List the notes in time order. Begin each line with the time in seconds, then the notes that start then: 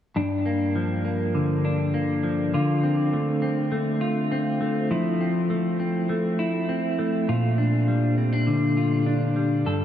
0.16 G2 D4
0.46 A#3
0.76 F3
1.05 A#3
1.35 D3
1.65 D4
1.94 A#3
2.23 F3
2.54 D3 F4
2.83 C4
3.13 A3
3.42 C4
3.72 A3
4.01 F4
4.32 C4
4.61 A3
4.91 F3 E4
5.21 C4
5.50 A3
5.80 C4
6.09 A3
6.39 E4
6.69 C4
6.99 A3
7.28 A#2 F4
7.58 D4
7.88 G3
8.18 C4
8.33 D4
8.47 D3
8.77 F4
9.06 D4
9.36 G3
9.66 G2 A4